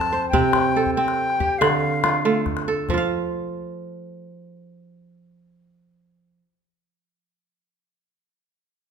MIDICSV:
0, 0, Header, 1, 4, 480
1, 0, Start_track
1, 0, Key_signature, -1, "major"
1, 0, Tempo, 425834
1, 369, Time_signature, 12, 3, 24, 8
1, 10041, End_track
2, 0, Start_track
2, 0, Title_t, "Flute"
2, 0, Program_c, 0, 73
2, 0, Note_on_c, 0, 81, 103
2, 325, Note_off_c, 0, 81, 0
2, 332, Note_on_c, 0, 79, 90
2, 1026, Note_off_c, 0, 79, 0
2, 1063, Note_on_c, 0, 79, 93
2, 1788, Note_on_c, 0, 77, 79
2, 1805, Note_off_c, 0, 79, 0
2, 2761, Note_off_c, 0, 77, 0
2, 10041, End_track
3, 0, Start_track
3, 0, Title_t, "Kora"
3, 0, Program_c, 1, 46
3, 0, Note_on_c, 1, 53, 86
3, 0, Note_on_c, 1, 60, 76
3, 0, Note_on_c, 1, 69, 73
3, 141, Note_on_c, 1, 72, 64
3, 371, Note_off_c, 1, 60, 0
3, 375, Note_on_c, 1, 60, 71
3, 377, Note_on_c, 1, 48, 87
3, 425, Note_off_c, 1, 53, 0
3, 856, Note_off_c, 1, 69, 0
3, 861, Note_on_c, 1, 69, 69
3, 1091, Note_off_c, 1, 60, 0
3, 1096, Note_on_c, 1, 60, 81
3, 1480, Note_off_c, 1, 72, 0
3, 1581, Note_on_c, 1, 67, 70
3, 1815, Note_on_c, 1, 50, 79
3, 1867, Note_off_c, 1, 48, 0
3, 2297, Note_on_c, 1, 65, 62
3, 2346, Note_off_c, 1, 69, 0
3, 2536, Note_off_c, 1, 65, 0
3, 2537, Note_on_c, 1, 57, 77
3, 2541, Note_on_c, 1, 65, 67
3, 3020, Note_on_c, 1, 69, 67
3, 3125, Note_off_c, 1, 60, 0
3, 3173, Note_off_c, 1, 67, 0
3, 3266, Note_on_c, 1, 53, 80
3, 3306, Note_off_c, 1, 65, 0
3, 3308, Note_off_c, 1, 50, 0
3, 3310, Note_on_c, 1, 65, 75
3, 3354, Note_on_c, 1, 77, 81
3, 4505, Note_off_c, 1, 69, 0
3, 4788, Note_off_c, 1, 57, 0
3, 7214, Note_off_c, 1, 53, 0
3, 7258, Note_off_c, 1, 65, 0
3, 7302, Note_off_c, 1, 77, 0
3, 10041, End_track
4, 0, Start_track
4, 0, Title_t, "Calabash"
4, 14, Note_on_c, 9, 38, 51
4, 127, Note_off_c, 9, 38, 0
4, 134, Note_on_c, 9, 38, 21
4, 246, Note_off_c, 9, 38, 0
4, 251, Note_on_c, 9, 38, 19
4, 364, Note_off_c, 9, 38, 0
4, 373, Note_on_c, 9, 36, 64
4, 486, Note_off_c, 9, 36, 0
4, 487, Note_on_c, 9, 38, 20
4, 599, Note_off_c, 9, 38, 0
4, 601, Note_on_c, 9, 38, 69
4, 713, Note_off_c, 9, 38, 0
4, 968, Note_on_c, 9, 36, 56
4, 1081, Note_off_c, 9, 36, 0
4, 1218, Note_on_c, 9, 38, 50
4, 1331, Note_off_c, 9, 38, 0
4, 1464, Note_on_c, 9, 38, 20
4, 1577, Note_off_c, 9, 38, 0
4, 1580, Note_on_c, 9, 36, 65
4, 1693, Note_off_c, 9, 36, 0
4, 1826, Note_on_c, 9, 38, 68
4, 1938, Note_off_c, 9, 38, 0
4, 1940, Note_on_c, 9, 38, 21
4, 2053, Note_off_c, 9, 38, 0
4, 2185, Note_on_c, 9, 38, 22
4, 2297, Note_off_c, 9, 38, 0
4, 2297, Note_on_c, 9, 38, 71
4, 2410, Note_off_c, 9, 38, 0
4, 2773, Note_on_c, 9, 36, 68
4, 2773, Note_on_c, 9, 38, 22
4, 2885, Note_off_c, 9, 36, 0
4, 2885, Note_off_c, 9, 38, 0
4, 2894, Note_on_c, 9, 38, 51
4, 3006, Note_off_c, 9, 38, 0
4, 3254, Note_on_c, 9, 36, 81
4, 3367, Note_off_c, 9, 36, 0
4, 10041, End_track
0, 0, End_of_file